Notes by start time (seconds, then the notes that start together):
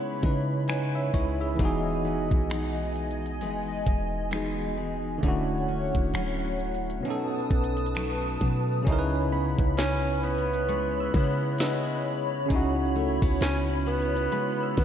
Already playing: C#3 G#3 B3 C#4 D#4 E4 B4 C#5 B5
0.21 C#3 C#4 D#4 E4, kick, closed hi-hat
0.26 B4
0.68 G#3 B3 D#4 E4 B4 G#5, finger snap, closed hi-hat
0.95 E5
1.14 C#2 G#3 E4 C#5, kick
1.41 G#4 E5
1.55 E3 B3
1.59 E1 E3 D#4 F#4 D#5 G#5, kick, closed hi-hat
1.65 G#4
2.05 B3
2.31 B1, kick
2.50 G#3 B3 D#4, finger snap, closed hi-hat
2.96 closed hi-hat
3.11 closed hi-hat
3.26 closed hi-hat
3.41 F#1 G#3 B3 D#4, closed hi-hat
3.86 E1, kick, closed hi-hat
4.30 E3 G#3 B3 D#4 F#4, finger snap, closed hi-hat
4.35 G#4
4.78 G#3
5.18 D3 A3
5.23 D1 D3 C#4 E4 C#5 F#5, kick, closed hi-hat
5.28 F#4
5.68 C#4
5.95 D1, kick
6.14 D1 F#3 C#4 E4, finger snap, closed hi-hat
6.59 closed hi-hat
6.75 closed hi-hat
6.90 closed hi-hat
7.00 B2 B3
7.05 B2 C#4 D#4 B4 A5 D#6, closed hi-hat
7.10 A4
7.50 B1, kick, closed hi-hat
7.64 closed hi-hat
7.77 closed hi-hat
7.86 closed hi-hat
7.95 F#3 A3 D#4, finger snap, closed hi-hat
8.41 B2 F#3, kick
8.82 C#3 C#4
8.86 C#2 C#3 D#4 E4 C#5 B5, kick, closed hi-hat
8.92 A#4
8.99 B4
9.32 B3 B5
9.59 C#2, kick
9.77 C#4, snare, closed hi-hat
10.23 B3 E4, closed hi-hat
10.38 closed hi-hat
10.53 closed hi-hat
10.69 G#3 C#6, closed hi-hat
11.00 E6
11.14 C#3 G#3 B3 E4, kick, closed hi-hat
11.24 F#6
11.59 G#3 B3 E6, snare, closed hi-hat
12.46 C#3 C#4
12.50 C#2 C#3 D#4 E4, kick, closed hi-hat
12.56 F#4
12.96 A3
13.22 C#2 B3, kick
13.41 C#2 C#4, snare, closed hi-hat
13.87 B3 E4, closed hi-hat
14.02 closed hi-hat
14.17 closed hi-hat
14.32 G#3 B5, closed hi-hat
14.63 E6
14.77 C#3 G#3 B3 E4, kick, closed hi-hat